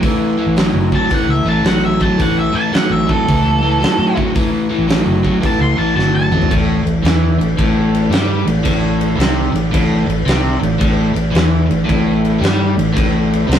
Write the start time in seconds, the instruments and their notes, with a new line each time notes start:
0.02 overdriven electric guitar A2 E3, kick, open hi-hat
0.37 overdriven electric guitar A2 E3
0.46 fingered electric bass A1
0.56 overdriven electric guitar A2 F#3, snare, open hi-hat
0.73 fingered electric bass F#1
0.92 overdriven electric guitar A2 F#3, lead electric guitar A5, kick
1.10 overdriven electric guitar A2 E3, kick, open hi-hat
1.14 lead electric guitar F#5
1.28 fingered electric bass C#2, lead electric guitar E5
1.44 fingered electric bass A1, overdriven electric guitar A2 E3
1.49 lead electric guitar A5
1.63 fingered electric bass A1, overdriven electric guitar A2 F#3, lead electric guitar F#5, snare, open hi-hat
1.85 lead electric guitar E5
1.99 overdriven electric guitar A2 F#3, lead electric guitar A5, kick
2.17 fingered electric bass A1, overdriven electric guitar A2 E3, kick, open hi-hat
2.22 lead electric guitar F#5
2.39 lead electric guitar E5
2.52 overdriven electric guitar A2 E3, fingered electric bass A2, lead electric guitar A5
2.72 overdriven electric guitar A2 F#3, lead electric guitar F#5, snare, open hi-hat
2.90 fingered electric bass A1, lead electric guitar E5
3.07 overdriven electric guitar A2 F#3, lead electric guitar A4, kick
3.28 fingered electric bass C#2, overdriven electric guitar A2 E3, kick, open hi-hat
3.62 overdriven electric guitar A2 E3
3.80 overdriven electric guitar A2 F#3, snare, open hi-hat
3.98 fingered electric bass A2
4.15 overdriven electric guitar A2 F#3, kick
4.35 overdriven electric guitar A2 E3, kick, open hi-hat
4.70 overdriven electric guitar A2 E3
4.78 fingered electric bass A1
4.87 overdriven electric guitar A2 F#3, snare, open hi-hat
5.06 fingered electric bass F#1
5.23 overdriven electric guitar A2 F#3, kick
5.40 overdriven electric guitar A2 E3, kick, open hi-hat
5.46 lead electric guitar A5
5.60 fingered electric bass C#2, lead electric guitar C6
5.76 fingered electric bass A1, overdriven electric guitar A2 E3, lead electric guitar A5
5.96 fingered electric bass G1, overdriven electric guitar A2 F#3, lead electric guitar A5, snare
6.15 lead electric guitar A5
6.31 fingered electric bass A1, overdriven electric guitar A2 F#3, mid tom
6.42 floor tom
6.50 fingered electric bass A1, overdriven electric guitar A2, kick, crash
6.84 fingered electric bass A1, overdriven electric guitar A2, crash
7.03 fingered electric bass E2, overdriven electric guitar E3, snare, crash
7.38 fingered electric bass A1, overdriven electric guitar A2, crash
7.58 fingered electric bass A1, overdriven electric guitar A2, kick, crash
7.95 crash
8.10 fingered electric bass G2, overdriven electric guitar G3, crash
8.14 snare
8.45 fingered electric bass A1, overdriven electric guitar A2, crash
8.64 fingered electric bass A1, overdriven electric guitar A2, kick, crash
9.01 crash
9.17 fingered electric bass C2, overdriven electric guitar C3, crash
9.21 snare
9.53 fingered electric bass A1, overdriven electric guitar A2, crash
9.72 fingered electric bass A1, overdriven electric guitar A2, kick, crash
10.07 fingered electric bass A1, overdriven electric guitar A2, crash
10.26 fingered electric bass C2, overdriven electric guitar C3, snare, crash
10.60 fingered electric bass A1, overdriven electric guitar A2, crash
10.79 fingered electric bass A1, overdriven electric guitar A2, kick, crash
11.14 fingered electric bass A1, overdriven electric guitar A2, crash
11.32 fingered electric bass E2, overdriven electric guitar E3, crash
11.36 snare
11.67 fingered electric bass A1, overdriven electric guitar A2, crash
11.85 fingered electric bass A1, overdriven electric guitar A2
11.89 kick, crash
12.25 crash
12.40 fingered electric bass G2, overdriven electric guitar G3, crash
12.45 snare
12.75 fingered electric bass A1, overdriven electric guitar A2
12.79 crash
12.93 fingered electric bass A1, overdriven electric guitar A2, kick
12.98 crash
13.33 crash
13.48 fingered electric bass C2, overdriven electric guitar C3, crash
13.53 snare